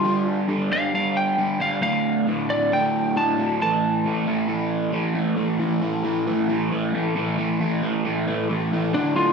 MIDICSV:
0, 0, Header, 1, 3, 480
1, 0, Start_track
1, 0, Tempo, 443787
1, 62, Time_signature, 4, 2, 24, 8
1, 10089, End_track
2, 0, Start_track
2, 0, Title_t, "Lead electric guitar"
2, 0, Program_c, 0, 29
2, 0, Note_on_c, 0, 65, 111
2, 288, Note_off_c, 0, 65, 0
2, 785, Note_on_c, 0, 77, 117
2, 1014, Note_off_c, 0, 77, 0
2, 1027, Note_on_c, 0, 77, 106
2, 1258, Note_off_c, 0, 77, 0
2, 1264, Note_on_c, 0, 79, 108
2, 1729, Note_off_c, 0, 79, 0
2, 1746, Note_on_c, 0, 77, 86
2, 1964, Note_off_c, 0, 77, 0
2, 1977, Note_on_c, 0, 77, 113
2, 2446, Note_off_c, 0, 77, 0
2, 2704, Note_on_c, 0, 74, 100
2, 2937, Note_off_c, 0, 74, 0
2, 2956, Note_on_c, 0, 79, 107
2, 3416, Note_off_c, 0, 79, 0
2, 3431, Note_on_c, 0, 81, 98
2, 3893, Note_off_c, 0, 81, 0
2, 3917, Note_on_c, 0, 81, 110
2, 5308, Note_off_c, 0, 81, 0
2, 9673, Note_on_c, 0, 62, 106
2, 9891, Note_off_c, 0, 62, 0
2, 9908, Note_on_c, 0, 65, 113
2, 10089, Note_off_c, 0, 65, 0
2, 10089, End_track
3, 0, Start_track
3, 0, Title_t, "Overdriven electric guitar"
3, 0, Program_c, 1, 29
3, 46, Note_on_c, 1, 43, 92
3, 51, Note_on_c, 1, 50, 101
3, 58, Note_on_c, 1, 55, 98
3, 509, Note_off_c, 1, 43, 0
3, 514, Note_off_c, 1, 50, 0
3, 519, Note_off_c, 1, 55, 0
3, 522, Note_on_c, 1, 43, 81
3, 527, Note_on_c, 1, 50, 94
3, 532, Note_on_c, 1, 55, 95
3, 753, Note_off_c, 1, 43, 0
3, 760, Note_off_c, 1, 50, 0
3, 766, Note_off_c, 1, 55, 0
3, 766, Note_on_c, 1, 43, 72
3, 773, Note_on_c, 1, 50, 86
3, 779, Note_on_c, 1, 55, 87
3, 999, Note_off_c, 1, 43, 0
3, 1009, Note_off_c, 1, 50, 0
3, 1011, Note_off_c, 1, 55, 0
3, 1012, Note_on_c, 1, 43, 86
3, 1022, Note_on_c, 1, 50, 93
3, 1024, Note_on_c, 1, 55, 101
3, 1479, Note_off_c, 1, 43, 0
3, 1484, Note_off_c, 1, 50, 0
3, 1490, Note_off_c, 1, 55, 0
3, 1492, Note_on_c, 1, 43, 86
3, 1497, Note_on_c, 1, 50, 89
3, 1503, Note_on_c, 1, 55, 92
3, 1714, Note_off_c, 1, 43, 0
3, 1720, Note_off_c, 1, 50, 0
3, 1722, Note_off_c, 1, 55, 0
3, 1727, Note_on_c, 1, 43, 83
3, 1733, Note_on_c, 1, 50, 87
3, 1735, Note_on_c, 1, 55, 90
3, 1956, Note_off_c, 1, 50, 0
3, 1959, Note_off_c, 1, 43, 0
3, 1963, Note_on_c, 1, 38, 95
3, 1964, Note_off_c, 1, 55, 0
3, 1968, Note_on_c, 1, 45, 97
3, 1969, Note_on_c, 1, 50, 97
3, 2442, Note_off_c, 1, 38, 0
3, 2448, Note_off_c, 1, 45, 0
3, 2455, Note_on_c, 1, 38, 91
3, 2456, Note_off_c, 1, 50, 0
3, 2461, Note_on_c, 1, 45, 87
3, 2469, Note_on_c, 1, 50, 97
3, 2682, Note_off_c, 1, 38, 0
3, 2685, Note_off_c, 1, 45, 0
3, 2695, Note_off_c, 1, 50, 0
3, 2695, Note_on_c, 1, 38, 84
3, 2698, Note_on_c, 1, 45, 93
3, 2708, Note_on_c, 1, 50, 89
3, 2929, Note_off_c, 1, 45, 0
3, 2930, Note_off_c, 1, 38, 0
3, 2935, Note_off_c, 1, 50, 0
3, 2942, Note_on_c, 1, 38, 82
3, 2942, Note_on_c, 1, 45, 97
3, 2948, Note_on_c, 1, 50, 103
3, 3409, Note_off_c, 1, 38, 0
3, 3413, Note_off_c, 1, 45, 0
3, 3419, Note_off_c, 1, 50, 0
3, 3422, Note_on_c, 1, 38, 75
3, 3426, Note_on_c, 1, 45, 84
3, 3432, Note_on_c, 1, 50, 88
3, 3639, Note_off_c, 1, 38, 0
3, 3645, Note_off_c, 1, 45, 0
3, 3648, Note_off_c, 1, 50, 0
3, 3652, Note_on_c, 1, 38, 84
3, 3658, Note_on_c, 1, 45, 96
3, 3661, Note_on_c, 1, 50, 101
3, 3884, Note_off_c, 1, 38, 0
3, 3887, Note_off_c, 1, 45, 0
3, 3888, Note_off_c, 1, 50, 0
3, 3898, Note_on_c, 1, 45, 99
3, 3906, Note_on_c, 1, 52, 89
3, 3908, Note_on_c, 1, 57, 99
3, 4366, Note_off_c, 1, 45, 0
3, 4373, Note_off_c, 1, 52, 0
3, 4376, Note_off_c, 1, 57, 0
3, 4379, Note_on_c, 1, 45, 89
3, 4386, Note_on_c, 1, 52, 93
3, 4389, Note_on_c, 1, 57, 103
3, 4598, Note_off_c, 1, 45, 0
3, 4602, Note_off_c, 1, 52, 0
3, 4609, Note_off_c, 1, 57, 0
3, 4611, Note_on_c, 1, 45, 79
3, 4615, Note_on_c, 1, 52, 87
3, 4622, Note_on_c, 1, 57, 95
3, 4834, Note_off_c, 1, 45, 0
3, 4837, Note_off_c, 1, 52, 0
3, 4845, Note_off_c, 1, 57, 0
3, 4847, Note_on_c, 1, 45, 89
3, 4850, Note_on_c, 1, 52, 93
3, 4858, Note_on_c, 1, 57, 106
3, 5308, Note_off_c, 1, 45, 0
3, 5315, Note_off_c, 1, 52, 0
3, 5319, Note_off_c, 1, 57, 0
3, 5321, Note_on_c, 1, 45, 69
3, 5328, Note_on_c, 1, 52, 96
3, 5332, Note_on_c, 1, 57, 97
3, 5550, Note_off_c, 1, 45, 0
3, 5555, Note_off_c, 1, 52, 0
3, 5559, Note_off_c, 1, 57, 0
3, 5563, Note_on_c, 1, 45, 82
3, 5568, Note_on_c, 1, 52, 89
3, 5572, Note_on_c, 1, 57, 98
3, 5786, Note_off_c, 1, 45, 0
3, 5796, Note_off_c, 1, 52, 0
3, 5799, Note_on_c, 1, 45, 97
3, 5800, Note_off_c, 1, 57, 0
3, 5809, Note_on_c, 1, 52, 95
3, 5813, Note_on_c, 1, 57, 104
3, 6043, Note_off_c, 1, 45, 0
3, 6047, Note_off_c, 1, 52, 0
3, 6047, Note_on_c, 1, 45, 86
3, 6051, Note_on_c, 1, 52, 96
3, 6057, Note_off_c, 1, 57, 0
3, 6061, Note_on_c, 1, 57, 105
3, 6287, Note_off_c, 1, 45, 0
3, 6291, Note_on_c, 1, 45, 100
3, 6292, Note_off_c, 1, 52, 0
3, 6296, Note_off_c, 1, 57, 0
3, 6297, Note_on_c, 1, 52, 99
3, 6301, Note_on_c, 1, 57, 109
3, 6525, Note_off_c, 1, 45, 0
3, 6528, Note_off_c, 1, 52, 0
3, 6529, Note_on_c, 1, 45, 89
3, 6532, Note_on_c, 1, 52, 96
3, 6537, Note_off_c, 1, 57, 0
3, 6541, Note_on_c, 1, 57, 91
3, 6761, Note_off_c, 1, 45, 0
3, 6770, Note_off_c, 1, 52, 0
3, 6774, Note_on_c, 1, 45, 80
3, 6778, Note_off_c, 1, 57, 0
3, 6782, Note_on_c, 1, 57, 92
3, 6783, Note_on_c, 1, 52, 96
3, 7003, Note_off_c, 1, 45, 0
3, 7010, Note_off_c, 1, 52, 0
3, 7016, Note_on_c, 1, 45, 98
3, 7018, Note_off_c, 1, 57, 0
3, 7023, Note_on_c, 1, 52, 108
3, 7023, Note_on_c, 1, 57, 108
3, 7243, Note_off_c, 1, 45, 0
3, 7246, Note_off_c, 1, 52, 0
3, 7256, Note_on_c, 1, 45, 80
3, 7259, Note_on_c, 1, 52, 83
3, 7264, Note_off_c, 1, 57, 0
3, 7269, Note_on_c, 1, 57, 90
3, 7482, Note_off_c, 1, 45, 0
3, 7493, Note_off_c, 1, 52, 0
3, 7495, Note_on_c, 1, 45, 88
3, 7506, Note_on_c, 1, 52, 84
3, 7508, Note_off_c, 1, 57, 0
3, 7512, Note_on_c, 1, 57, 91
3, 7724, Note_off_c, 1, 45, 0
3, 7731, Note_off_c, 1, 52, 0
3, 7736, Note_off_c, 1, 57, 0
3, 7737, Note_on_c, 1, 45, 95
3, 7744, Note_on_c, 1, 52, 103
3, 7749, Note_on_c, 1, 57, 102
3, 7967, Note_off_c, 1, 45, 0
3, 7969, Note_off_c, 1, 52, 0
3, 7975, Note_off_c, 1, 57, 0
3, 7980, Note_on_c, 1, 45, 85
3, 7982, Note_on_c, 1, 52, 94
3, 7988, Note_on_c, 1, 57, 97
3, 8211, Note_off_c, 1, 45, 0
3, 8216, Note_off_c, 1, 52, 0
3, 8219, Note_off_c, 1, 57, 0
3, 8224, Note_on_c, 1, 45, 88
3, 8229, Note_on_c, 1, 52, 93
3, 8232, Note_on_c, 1, 57, 108
3, 8451, Note_off_c, 1, 45, 0
3, 8451, Note_off_c, 1, 52, 0
3, 8461, Note_off_c, 1, 57, 0
3, 8464, Note_on_c, 1, 45, 81
3, 8464, Note_on_c, 1, 52, 101
3, 8474, Note_on_c, 1, 57, 85
3, 8689, Note_off_c, 1, 45, 0
3, 8695, Note_off_c, 1, 52, 0
3, 8696, Note_off_c, 1, 57, 0
3, 8702, Note_on_c, 1, 45, 82
3, 8708, Note_on_c, 1, 52, 93
3, 8709, Note_on_c, 1, 57, 92
3, 8932, Note_off_c, 1, 45, 0
3, 8939, Note_off_c, 1, 57, 0
3, 8940, Note_off_c, 1, 52, 0
3, 8945, Note_on_c, 1, 45, 106
3, 8952, Note_on_c, 1, 57, 112
3, 8953, Note_on_c, 1, 52, 105
3, 9166, Note_off_c, 1, 45, 0
3, 9174, Note_off_c, 1, 52, 0
3, 9177, Note_off_c, 1, 57, 0
3, 9179, Note_on_c, 1, 45, 86
3, 9187, Note_on_c, 1, 52, 87
3, 9190, Note_on_c, 1, 57, 93
3, 9412, Note_off_c, 1, 45, 0
3, 9422, Note_off_c, 1, 52, 0
3, 9425, Note_on_c, 1, 45, 79
3, 9429, Note_off_c, 1, 57, 0
3, 9435, Note_on_c, 1, 52, 80
3, 9442, Note_on_c, 1, 57, 95
3, 9649, Note_off_c, 1, 45, 0
3, 9654, Note_off_c, 1, 52, 0
3, 9658, Note_off_c, 1, 57, 0
3, 9662, Note_on_c, 1, 38, 93
3, 9670, Note_on_c, 1, 45, 101
3, 9678, Note_on_c, 1, 50, 97
3, 9886, Note_off_c, 1, 38, 0
3, 9890, Note_off_c, 1, 45, 0
3, 9897, Note_off_c, 1, 50, 0
3, 9899, Note_on_c, 1, 38, 83
3, 9903, Note_on_c, 1, 45, 97
3, 9910, Note_on_c, 1, 50, 101
3, 10089, Note_off_c, 1, 38, 0
3, 10089, Note_off_c, 1, 45, 0
3, 10089, Note_off_c, 1, 50, 0
3, 10089, End_track
0, 0, End_of_file